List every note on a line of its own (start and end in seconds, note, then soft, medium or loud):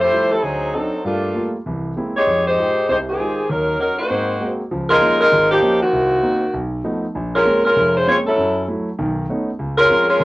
0.02 0.30 A3 medium
0.02 0.30 E4 medium
0.02 0.30 G4 medium
0.02 0.30 C5 loud
0.12 0.33 F3 soft
0.12 0.33 G3 soft
0.12 0.33 A3 soft
0.12 0.33 E4 soft
0.32 0.44 G3 medium
0.32 0.43 C4 medium
0.32 0.44 E4 medium
0.32 0.44 A4 medium
0.43 0.69 D2 medium
0.43 0.74 F#3 medium
0.43 0.74 C4 medium
0.43 0.74 D#4 medium
0.43 0.74 G#4 medium
0.74 0.94 F#3 soft
0.74 1.05 F#3 medium
0.74 0.94 C4 soft
0.74 1.05 C4 medium
0.74 0.94 D4 soft
0.74 1.05 D#4 medium
0.74 0.94 D#4 medium
0.74 1.05 A4 medium
1.04 1.31 G2 medium
1.04 1.31 G3 medium
1.04 1.51 A3 medium
1.04 1.51 A#3 medium
1.04 1.51 D4 medium
1.04 1.51 F4 medium
1.35 1.55 G3 soft
1.35 1.55 A3 soft
1.35 1.55 A#3 soft
1.35 1.55 F4 soft
1.66 1.92 C2 medium
1.66 1.92 E3 medium
1.96 2.16 G#3 soft
1.96 2.16 A#3 soft
1.96 2.16 C4 soft
1.96 2.17 E4 soft
2.16 2.44 G#3 medium
2.16 2.44 D#4 medium
2.16 2.44 G4 medium
2.16 2.44 C#5 medium
2.27 2.53 F2 medium
2.48 2.88 G#3 medium
2.48 2.89 D#4 medium
2.48 2.89 G4 medium
2.48 2.89 C5 loud
2.58 2.78 G#3 soft
2.58 2.78 D#4 soft
2.58 2.78 F4 soft
2.58 2.78 G4 medium
2.89 3.14 C2 medium
2.89 3.14 C3 medium
2.89 2.98 G#3 medium
2.89 2.98 D#4 medium
2.89 2.98 G4 medium
2.89 2.98 C5 medium
3.09 3.47 D#3 medium
3.09 3.47 C4 medium
3.09 3.47 G4 medium
3.09 3.47 G#4 medium
3.19 3.38 G#3 soft
3.19 3.38 D#4 soft
3.19 3.39 F4 soft
3.19 3.39 G4 medium
3.50 3.75 D#2 medium
3.50 3.79 F#3 medium
3.50 3.80 C#4 medium
3.50 3.79 D#4 medium
3.50 3.79 A#4 medium
3.80 3.97 F#3 medium
3.80 3.99 C#4 soft
3.80 3.98 C#4 medium
3.80 4.00 D#4 soft
3.80 3.98 D#4 medium
3.80 4.00 F#4 soft
3.80 3.97 A#4 medium
3.99 4.56 A#3 medium
3.99 4.56 D#4 medium
3.99 4.56 F#4 medium
3.99 4.56 C5 medium
4.10 4.36 G#2 medium
4.10 4.36 C4 medium
4.41 4.60 G#3 soft
4.41 4.61 A#3 soft
4.41 4.61 C4 soft
4.41 4.61 F#4 soft
4.71 4.97 C#2 medium
4.71 4.97 F3 medium
4.90 5.18 G#3 medium
4.90 5.18 D#4 loud
4.90 5.18 F4 loud
4.90 5.18 A#4 loud
5.02 5.22 F3 soft
5.02 5.22 A#3 soft
5.02 5.22 C#4 soft
5.02 5.22 D#4 medium
5.20 5.49 G#3 medium
5.20 5.49 D#4 medium
5.20 5.49 F4 medium
5.20 5.49 A#4 loud
5.32 5.58 G#1 medium
5.52 5.80 F3 medium
5.52 5.80 A#3 medium
5.52 5.80 D#4 medium
5.52 5.79 G4 medium
5.62 5.82 F3 soft
5.62 5.82 A#3 soft
5.62 5.83 C#4 soft
5.62 5.83 D#4 medium
5.83 6.70 D#3 medium
5.83 6.51 A#3 medium
5.83 6.51 C4 medium
5.83 6.70 F#4 medium
5.93 6.19 C2 medium
6.23 6.43 A#3 soft
6.23 6.43 C4 soft
6.23 6.44 D#4 medium
6.54 6.80 B1 medium
6.84 7.04 F3 soft
6.84 7.04 A3 soft
6.84 7.05 B3 soft
6.84 7.05 D#4 medium
7.15 7.41 A#1 medium
7.35 7.63 G#3 medium
7.35 7.63 C#4 medium
7.35 7.63 F4 medium
7.35 7.63 A#4 medium
7.45 7.65 G#3 soft
7.45 7.66 A#3 soft
7.45 7.66 C4 soft
7.45 7.66 C#4 soft
7.66 7.93 G#3 medium
7.66 7.93 C#4 medium
7.66 7.93 F4 medium
7.66 7.93 A#4 loud
7.76 8.02 F1 medium
7.76 8.02 F2 medium
7.97 8.08 G#3 medium
7.97 8.08 C#4 medium
7.97 8.07 F4 medium
7.97 8.08 C5 medium
8.07 8.27 G#3 medium
8.07 8.17 G#3 medium
8.07 8.27 A#3 soft
8.07 8.27 C4 soft
8.07 8.17 C4 medium
8.07 8.27 C#4 medium
8.07 8.17 F4 medium
8.07 8.17 C#5 medium
8.27 8.65 F#3 medium
8.27 8.66 C#4 medium
8.27 8.66 E4 medium
8.27 8.66 A4 medium
8.38 8.64 F#2 medium
8.38 8.64 F#3 medium
8.68 8.88 F#3 soft
8.68 8.88 A3 soft
8.68 8.88 E4 soft
8.99 9.24 B1 medium
8.99 9.25 D#3 medium
9.30 9.49 A3 soft
9.30 9.49 B3 soft
9.30 9.49 C#4 soft
9.30 9.49 D#4 medium
9.59 9.85 C#2 medium
9.78 10.07 G#3 loud
9.78 10.06 C#4 loud
9.78 10.06 F4 medium
9.78 10.06 A#4 loud
9.89 10.09 F3 soft
9.89 10.10 C4 soft
9.89 10.10 C#4 medium
10.08 10.24 G#3 medium
10.08 10.24 C#4 loud
10.08 10.24 F4 medium
10.08 10.24 A#4 medium
10.20 10.24 G#1 medium
10.20 10.24 C3 medium